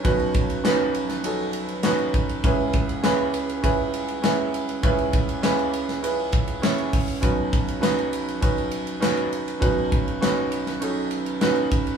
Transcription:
<<
  \new Staff \with { instrumentName = "Grand piano" } { \time 4/4 \key b \major \tempo 4 = 100 <cis' dis' fis' b'>8 r8 <cis' dis' fis' b'>8 r8 <cis' dis' fis' a'>8 r8 <cis' dis' fis' b'>8 r8 | <cis' e' gis' b'>8 r8 <cis' e' gis' b'>8 r8 <cis' e' gis' b'>8 r8 <cis' e' gis' b'>8 r8 | <cis' e' gis' b'>8 r8 <cis' e' gis' b'>8 r8 <cis' e' gis' b'>8 r8 <cis' e' gis' cis''>8 r8 | <cis' dis' fis' b'>8 r8 <cis' dis' fis' b'>8 r8 <cis' dis' fis' b'>8 r8 <cis' dis' fis' b'>8 r8 |
<cis' dis' fis' b'>8 r8 <cis' dis' fis' b'>8 r8 <cis' dis' fis' a'>8 r8 <cis' dis' fis' b'>8 r8 | }
  \new Staff \with { instrumentName = "Grand piano" } { \clef bass \time 4/4 \key b \major <b,, b,>1 | <cis, cis>1 | <cis, cis>1 | <b,, b,>1 |
<b,, b,>1 | }
  \new DrumStaff \with { instrumentName = "Drums" } \drummode { \time 4/4 <bd cymr>16 cymr16 <bd cymr>16 cymr16 <hc cymr sn>8 cymr16 <cymr sn>16 cymr8 cymr16 cymr16 <hc cymr sn>16 cymr16 <bd cymr>16 cymr16 | <bd cymr>8 <bd cymr>16 cymr16 <hc cymr sn>8 cymr16 cymr16 <bd cymr>8 cymr16 cymr16 <hc cymr sn>8 cymr16 cymr16 | <bd cymr>16 cymr16 <bd cymr>16 cymr16 <hc cymr sn>16 cymr16 cymr16 <cymr sn>16 cymr8 <bd cymr>16 cymr16 <hc cymr sn>16 cymr16 <hho bd cymr>16 cymr16 | <hhp bd cymr>8 <bd cymr>16 cymr16 <hc cymr sn>16 cymr16 cymr16 cymr16 <bd cymr>16 cymr16 cymr16 cymr16 <hc cymr sn>16 cymr16 cymr16 cymr16 |
<bd cymr>8 <bd cymr>16 cymr16 <hc cymr sn>8 cymr16 <cymr sn>16 cymr8 cymr16 cymr16 <hc cymr sn>16 cymr16 <bd cymr>16 cymr16 | }
>>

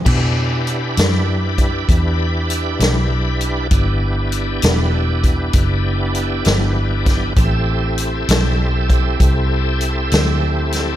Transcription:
<<
  \new Staff \with { instrumentName = "Tonewheel organ" } { \time 12/8 \key e \minor \tempo 4. = 66 <d' e' g' b'>1. | <b d' e' g'>1. | <c' e' g' a'>1. | }
  \new Staff \with { instrumentName = "Fingered electric bass" } { \clef bass \time 12/8 \key e \minor b,4. fis,4. e,4. b,,4. | g,,4. e,,4. fis,,4. g,,4. | a,,4. b,,4. c,4. d,4. | }
  \new DrumStaff \with { instrumentName = "Drums" } \drummode { \time 12/8 <cymc bd>4 hh8 <hh sn>4 <hh bd>8 <hh bd>4 hh8 <hh sn>4 hh8 | <hh bd>4 hh8 <hh sn>4 <hh bd>8 <hh bd>4 hh8 <hh sn>4 <hh bd sn>8 | <hh bd>4 hh8 <hh sn>4 <hh bd>8 <hh bd>4 hh8 <hh sn>4 <hh sn>8 | }
>>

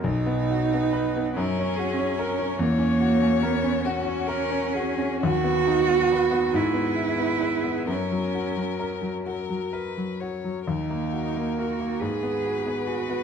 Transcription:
<<
  \new Staff \with { instrumentName = "Violin" } { \time 6/8 \key fis \mixolydian \tempo 4. = 46 r4. ais'8 gis'8 ais'8 | cis''4. fis'8 ais'8 gis'8 | fis'4. gis'4. | ais'4. ais'8 b'8 cis''8 |
ais'4. b'4. | }
  \new Staff \with { instrumentName = "Cello" } { \time 6/8 \key fis \mixolydian dis'4. cis'4. | ais4 b8 cis'4. | fis'4. e'4. | cis'4. r4. |
dis'4 fis'8 gis'4 fis'8 | }
  \new Staff \with { instrumentName = "Grand piano" } { \time 6/8 \key fis \mixolydian b,,16 b16 fis'16 b16 b'16 b16 fis,16 cis'16 fis'16 cis'16 ais'16 cis'16 | e,16 cis'16 fis'16 cis'16 ais'16 cis'16 fis'16 cis'16 ais'16 cis'16 fis'16 cis'16 | dis,16 b16 dis'16 b16 b'16 b16 gis,16 b16 e'16 b16 b'16 b16 | fis,16 fis16 fis'16 fis16 ais'16 fis16 fis'16 fis16 ais'16 fis16 fis'16 fis16 |
dis,16 ais16 fis'16 ais16 ais'16 ais16 gis,16 b16 fis'16 b16 gis'16 b16 | }
>>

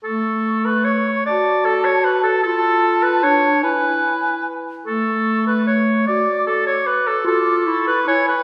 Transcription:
<<
  \new Staff \with { instrumentName = "Flute" } { \time 3/4 \key a \major \tempo 4 = 149 cis'''2. | a''2. | a''2. | gis''2~ gis''8 r8 |
cis'''2 cis'''4 | d'''4 d'''2 | d'''4 cis'''4 gis''4 | }
  \new Staff \with { instrumentName = "Oboe" } { \time 3/4 \key a \major a'4. b'8 cis''4 | d''4 a'8 cis''8 b'8 a'8 | a'4. b'8 cis''4 | b'2 r4 |
a'4. b'8 cis''4 | d''4 a'8 cis''8 b'8 a'8 | a'4. b'8 cis''8 b'8 | }
  \new Staff \with { instrumentName = "Clarinet" } { \time 3/4 \key a \major a2. | fis'2. | f'2 d'4 | e'2~ e'8 r8 |
a2. | fis'2. | f'4 e'4 e'4 | }
>>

